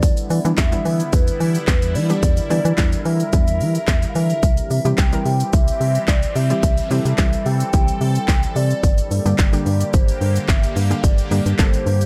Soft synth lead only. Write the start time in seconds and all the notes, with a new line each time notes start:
Already playing: D5
0.30 D5
0.58 E5
1.13 B4
1.68 B4
1.95 D5
2.50 D5
3.06 E5
4.09 F5
4.16 E5
4.71 E5
4.98 G5
5.53 E5
6.08 D5
6.36 E5
6.91 E5
7.46 G5
8.56 D5
9.11 D5
9.39 D5
9.94 C5
10.49 E5
10.77 F5
11.04 D5
11.32 D5
11.59 C5